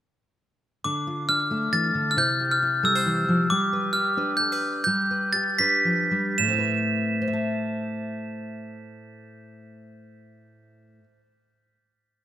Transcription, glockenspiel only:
0, 0, Header, 1, 2, 480
1, 0, Start_track
1, 0, Key_signature, 0, "minor"
1, 0, Tempo, 442152
1, 914, Time_signature, 3, 2, 24, 8
1, 4276, Tempo, 466926
1, 5716, Tempo, 519931
1, 6676, Tempo, 548948
1, 11806, End_track
2, 0, Start_track
2, 0, Title_t, "Glockenspiel"
2, 0, Program_c, 0, 9
2, 917, Note_on_c, 0, 86, 69
2, 1361, Note_off_c, 0, 86, 0
2, 1397, Note_on_c, 0, 89, 73
2, 1876, Note_on_c, 0, 93, 76
2, 1889, Note_off_c, 0, 89, 0
2, 2289, Note_off_c, 0, 93, 0
2, 2290, Note_on_c, 0, 89, 60
2, 2359, Note_off_c, 0, 89, 0
2, 2367, Note_on_c, 0, 91, 76
2, 2730, Note_off_c, 0, 91, 0
2, 2730, Note_on_c, 0, 89, 68
2, 3092, Note_off_c, 0, 89, 0
2, 3093, Note_on_c, 0, 88, 62
2, 3530, Note_off_c, 0, 88, 0
2, 3800, Note_on_c, 0, 86, 75
2, 4266, Note_on_c, 0, 89, 65
2, 4293, Note_off_c, 0, 86, 0
2, 4703, Note_off_c, 0, 89, 0
2, 4717, Note_on_c, 0, 91, 66
2, 5191, Note_off_c, 0, 91, 0
2, 5203, Note_on_c, 0, 91, 84
2, 5702, Note_on_c, 0, 93, 76
2, 5722, Note_off_c, 0, 91, 0
2, 5923, Note_off_c, 0, 93, 0
2, 5943, Note_on_c, 0, 95, 74
2, 6390, Note_off_c, 0, 95, 0
2, 6677, Note_on_c, 0, 100, 67
2, 10668, Note_off_c, 0, 100, 0
2, 11806, End_track
0, 0, End_of_file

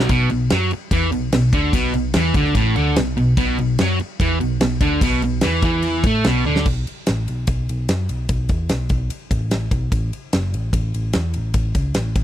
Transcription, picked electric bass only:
0, 0, Header, 1, 3, 480
1, 0, Start_track
1, 0, Tempo, 409277
1, 125, Time_signature, 4, 2, 24, 8
1, 14352, End_track
2, 0, Start_track
2, 0, Title_t, "Picked electric bass"
2, 0, Program_c, 0, 34
2, 115, Note_on_c, 0, 35, 95
2, 344, Note_off_c, 0, 35, 0
2, 374, Note_on_c, 0, 35, 72
2, 594, Note_off_c, 0, 35, 0
2, 606, Note_on_c, 0, 42, 93
2, 830, Note_off_c, 0, 42, 0
2, 1069, Note_on_c, 0, 40, 94
2, 1300, Note_off_c, 0, 40, 0
2, 1329, Note_on_c, 0, 35, 79
2, 1551, Note_off_c, 0, 35, 0
2, 1573, Note_on_c, 0, 35, 83
2, 1788, Note_off_c, 0, 35, 0
2, 1795, Note_on_c, 0, 38, 93
2, 2024, Note_off_c, 0, 38, 0
2, 2030, Note_on_c, 0, 35, 95
2, 2261, Note_off_c, 0, 35, 0
2, 2274, Note_on_c, 0, 35, 72
2, 2504, Note_off_c, 0, 35, 0
2, 2525, Note_on_c, 0, 40, 94
2, 2737, Note_off_c, 0, 40, 0
2, 2744, Note_on_c, 0, 38, 91
2, 2978, Note_off_c, 0, 38, 0
2, 2991, Note_on_c, 0, 33, 91
2, 3222, Note_off_c, 0, 33, 0
2, 3249, Note_on_c, 0, 38, 100
2, 3472, Note_off_c, 0, 38, 0
2, 3502, Note_on_c, 0, 35, 89
2, 3719, Note_off_c, 0, 35, 0
2, 3749, Note_on_c, 0, 35, 79
2, 3947, Note_off_c, 0, 35, 0
2, 3954, Note_on_c, 0, 35, 94
2, 4184, Note_off_c, 0, 35, 0
2, 4226, Note_on_c, 0, 35, 82
2, 4441, Note_off_c, 0, 35, 0
2, 4465, Note_on_c, 0, 42, 99
2, 4680, Note_off_c, 0, 42, 0
2, 4922, Note_on_c, 0, 40, 98
2, 5148, Note_off_c, 0, 40, 0
2, 5189, Note_on_c, 0, 35, 83
2, 5403, Note_off_c, 0, 35, 0
2, 5431, Note_on_c, 0, 35, 85
2, 5635, Note_off_c, 0, 35, 0
2, 5642, Note_on_c, 0, 38, 94
2, 5868, Note_off_c, 0, 38, 0
2, 5881, Note_on_c, 0, 35, 99
2, 6108, Note_off_c, 0, 35, 0
2, 6145, Note_on_c, 0, 35, 78
2, 6361, Note_off_c, 0, 35, 0
2, 6386, Note_on_c, 0, 40, 97
2, 6586, Note_off_c, 0, 40, 0
2, 6593, Note_on_c, 0, 40, 86
2, 7047, Note_off_c, 0, 40, 0
2, 7088, Note_on_c, 0, 45, 95
2, 7312, Note_off_c, 0, 45, 0
2, 7344, Note_on_c, 0, 35, 100
2, 7560, Note_off_c, 0, 35, 0
2, 7588, Note_on_c, 0, 38, 89
2, 7803, Note_off_c, 0, 38, 0
2, 7813, Note_on_c, 0, 35, 91
2, 8034, Note_off_c, 0, 35, 0
2, 8315, Note_on_c, 0, 33, 91
2, 8526, Note_off_c, 0, 33, 0
2, 8555, Note_on_c, 0, 35, 72
2, 8762, Note_off_c, 0, 35, 0
2, 8769, Note_on_c, 0, 35, 92
2, 8993, Note_off_c, 0, 35, 0
2, 9028, Note_on_c, 0, 35, 76
2, 9243, Note_off_c, 0, 35, 0
2, 9255, Note_on_c, 0, 42, 94
2, 9476, Note_off_c, 0, 42, 0
2, 9492, Note_on_c, 0, 35, 72
2, 9714, Note_off_c, 0, 35, 0
2, 9720, Note_on_c, 0, 35, 89
2, 9948, Note_off_c, 0, 35, 0
2, 9963, Note_on_c, 0, 40, 88
2, 10189, Note_off_c, 0, 40, 0
2, 10221, Note_on_c, 0, 35, 76
2, 10439, Note_off_c, 0, 35, 0
2, 10444, Note_on_c, 0, 35, 88
2, 10670, Note_off_c, 0, 35, 0
2, 10912, Note_on_c, 0, 33, 95
2, 11366, Note_off_c, 0, 33, 0
2, 11393, Note_on_c, 0, 35, 92
2, 11623, Note_off_c, 0, 35, 0
2, 11633, Note_on_c, 0, 33, 93
2, 11863, Note_off_c, 0, 33, 0
2, 12127, Note_on_c, 0, 30, 94
2, 12350, Note_off_c, 0, 30, 0
2, 12356, Note_on_c, 0, 33, 71
2, 12575, Note_off_c, 0, 33, 0
2, 12582, Note_on_c, 0, 33, 88
2, 12816, Note_off_c, 0, 33, 0
2, 12836, Note_on_c, 0, 33, 77
2, 13063, Note_off_c, 0, 33, 0
2, 13077, Note_on_c, 0, 40, 95
2, 13304, Note_off_c, 0, 40, 0
2, 13326, Note_on_c, 0, 33, 78
2, 13534, Note_off_c, 0, 33, 0
2, 13541, Note_on_c, 0, 33, 85
2, 13774, Note_off_c, 0, 33, 0
2, 13784, Note_on_c, 0, 37, 91
2, 14016, Note_off_c, 0, 37, 0
2, 14022, Note_on_c, 0, 33, 80
2, 14255, Note_off_c, 0, 33, 0
2, 14263, Note_on_c, 0, 33, 87
2, 14352, Note_off_c, 0, 33, 0
2, 14352, End_track
3, 0, Start_track
3, 0, Title_t, "Muted picked electric bass strokes"
3, 862, Note_on_c, 9, 29, 42
3, 979, Note_off_c, 9, 29, 0
3, 4713, Note_on_c, 9, 29, 38
3, 4830, Note_off_c, 9, 29, 0
3, 8066, Note_on_c, 9, 29, 37
3, 8183, Note_off_c, 9, 29, 0
3, 10693, Note_on_c, 9, 29, 38
3, 10811, Note_off_c, 9, 29, 0
3, 14352, End_track
0, 0, End_of_file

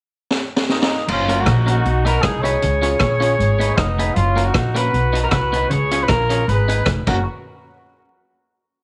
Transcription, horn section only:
0, 0, Header, 1, 2, 480
1, 0, Start_track
1, 0, Key_signature, 6, "major"
1, 0, Tempo, 385852
1, 1339, Time_signature, 4, 2, 24, 8
1, 10987, End_track
2, 0, Start_track
2, 0, Title_t, "Horn section"
2, 0, Program_c, 0, 61
2, 874, Note_on_c, 0, 63, 90
2, 878, Note_on_c, 0, 58, 68
2, 1312, Note_off_c, 0, 63, 0
2, 1314, Note_off_c, 0, 58, 0
2, 1366, Note_on_c, 0, 65, 100
2, 1389, Note_on_c, 0, 61, 80
2, 1721, Note_off_c, 0, 65, 0
2, 1731, Note_on_c, 0, 66, 94
2, 1732, Note_off_c, 0, 61, 0
2, 1760, Note_on_c, 0, 63, 79
2, 2068, Note_off_c, 0, 66, 0
2, 2083, Note_on_c, 0, 66, 88
2, 2093, Note_off_c, 0, 63, 0
2, 2108, Note_on_c, 0, 63, 75
2, 2525, Note_off_c, 0, 66, 0
2, 2538, Note_off_c, 0, 63, 0
2, 2561, Note_on_c, 0, 70, 105
2, 2586, Note_on_c, 0, 66, 84
2, 2755, Note_on_c, 0, 68, 92
2, 2777, Note_off_c, 0, 70, 0
2, 2787, Note_on_c, 0, 63, 76
2, 2790, Note_off_c, 0, 66, 0
2, 3001, Note_on_c, 0, 73, 106
2, 3023, Note_off_c, 0, 68, 0
2, 3036, Note_on_c, 0, 68, 88
2, 3039, Note_off_c, 0, 63, 0
2, 4675, Note_off_c, 0, 73, 0
2, 4680, Note_on_c, 0, 63, 97
2, 4693, Note_off_c, 0, 68, 0
2, 4722, Note_on_c, 0, 59, 74
2, 5157, Note_on_c, 0, 65, 100
2, 5166, Note_off_c, 0, 63, 0
2, 5187, Note_off_c, 0, 59, 0
2, 5197, Note_on_c, 0, 61, 73
2, 5529, Note_on_c, 0, 66, 92
2, 5534, Note_off_c, 0, 65, 0
2, 5554, Note_off_c, 0, 61, 0
2, 5575, Note_on_c, 0, 63, 67
2, 5905, Note_off_c, 0, 66, 0
2, 5913, Note_on_c, 0, 71, 99
2, 5928, Note_off_c, 0, 63, 0
2, 5956, Note_on_c, 0, 66, 79
2, 6503, Note_off_c, 0, 71, 0
2, 6508, Note_on_c, 0, 70, 86
2, 6525, Note_off_c, 0, 66, 0
2, 6544, Note_on_c, 0, 66, 71
2, 6557, Note_off_c, 0, 70, 0
2, 6585, Note_off_c, 0, 66, 0
2, 6609, Note_on_c, 0, 71, 95
2, 6637, Note_on_c, 0, 66, 71
2, 7058, Note_off_c, 0, 71, 0
2, 7073, Note_off_c, 0, 66, 0
2, 7079, Note_on_c, 0, 73, 111
2, 7111, Note_on_c, 0, 68, 82
2, 7457, Note_off_c, 0, 73, 0
2, 7473, Note_off_c, 0, 68, 0
2, 7478, Note_on_c, 0, 71, 92
2, 7504, Note_on_c, 0, 68, 64
2, 7580, Note_on_c, 0, 70, 97
2, 7582, Note_off_c, 0, 71, 0
2, 7595, Note_off_c, 0, 68, 0
2, 7606, Note_on_c, 0, 65, 70
2, 8025, Note_off_c, 0, 70, 0
2, 8039, Note_off_c, 0, 65, 0
2, 8077, Note_on_c, 0, 71, 100
2, 8094, Note_on_c, 0, 68, 77
2, 8606, Note_off_c, 0, 68, 0
2, 8606, Note_off_c, 0, 71, 0
2, 8817, Note_on_c, 0, 66, 89
2, 9014, Note_off_c, 0, 66, 0
2, 10987, End_track
0, 0, End_of_file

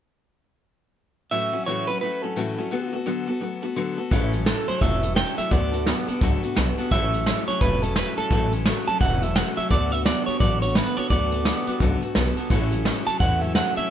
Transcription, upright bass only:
0, 0, Header, 1, 3, 480
1, 0, Start_track
1, 0, Key_signature, 3, "major"
1, 0, Tempo, 349650
1, 1812, Time_signature, 4, 2, 24, 8
1, 19083, End_track
2, 0, Start_track
2, 0, Title_t, "Upright bass"
2, 0, Program_c, 0, 32
2, 5647, Note_on_c, 0, 33, 86
2, 6191, Note_off_c, 0, 33, 0
2, 6610, Note_on_c, 0, 28, 75
2, 7153, Note_off_c, 0, 28, 0
2, 7569, Note_on_c, 0, 38, 100
2, 8112, Note_off_c, 0, 38, 0
2, 8534, Note_on_c, 0, 37, 67
2, 8784, Note_off_c, 0, 37, 0
2, 9019, Note_on_c, 0, 35, 85
2, 9266, Note_off_c, 0, 35, 0
2, 9492, Note_on_c, 0, 33, 101
2, 10034, Note_off_c, 0, 33, 0
2, 10451, Note_on_c, 0, 28, 70
2, 10993, Note_off_c, 0, 28, 0
2, 11404, Note_on_c, 0, 33, 88
2, 11948, Note_off_c, 0, 33, 0
2, 12368, Note_on_c, 0, 28, 82
2, 12910, Note_off_c, 0, 28, 0
2, 13325, Note_on_c, 0, 38, 100
2, 13868, Note_off_c, 0, 38, 0
2, 14284, Note_on_c, 0, 33, 80
2, 14827, Note_off_c, 0, 33, 0
2, 15242, Note_on_c, 0, 38, 103
2, 15786, Note_off_c, 0, 38, 0
2, 16205, Note_on_c, 0, 37, 81
2, 16456, Note_off_c, 0, 37, 0
2, 16689, Note_on_c, 0, 35, 78
2, 16939, Note_off_c, 0, 35, 0
2, 17166, Note_on_c, 0, 33, 104
2, 17709, Note_off_c, 0, 33, 0
2, 18126, Note_on_c, 0, 40, 80
2, 18669, Note_off_c, 0, 40, 0
2, 19083, End_track
3, 0, Start_track
3, 0, Title_t, "Muted upright bass strokes"
3, 6427, Note_on_c, 9, 29, 63
3, 6565, Note_off_c, 9, 29, 0
3, 7385, Note_on_c, 9, 29, 66
3, 7523, Note_off_c, 9, 29, 0
3, 8343, Note_on_c, 9, 29, 68
3, 8480, Note_off_c, 9, 29, 0
3, 8823, Note_on_c, 9, 29, 59
3, 8961, Note_off_c, 9, 29, 0
3, 9303, Note_on_c, 9, 29, 71
3, 9440, Note_off_c, 9, 29, 0
3, 10262, Note_on_c, 9, 29, 60
3, 10400, Note_off_c, 9, 29, 0
3, 11222, Note_on_c, 9, 29, 67
3, 11359, Note_off_c, 9, 29, 0
3, 12189, Note_on_c, 9, 29, 66
3, 12326, Note_off_c, 9, 29, 0
3, 13146, Note_on_c, 9, 29, 77
3, 13283, Note_off_c, 9, 29, 0
3, 14103, Note_on_c, 9, 29, 62
3, 14240, Note_off_c, 9, 29, 0
3, 15068, Note_on_c, 9, 29, 74
3, 15206, Note_off_c, 9, 29, 0
3, 16020, Note_on_c, 9, 29, 66
3, 16157, Note_off_c, 9, 29, 0
3, 16496, Note_on_c, 9, 29, 66
3, 16633, Note_off_c, 9, 29, 0
3, 16980, Note_on_c, 9, 29, 71
3, 17118, Note_off_c, 9, 29, 0
3, 17943, Note_on_c, 9, 29, 60
3, 18080, Note_off_c, 9, 29, 0
3, 18903, Note_on_c, 9, 29, 73
3, 19040, Note_off_c, 9, 29, 0
3, 19083, End_track
0, 0, End_of_file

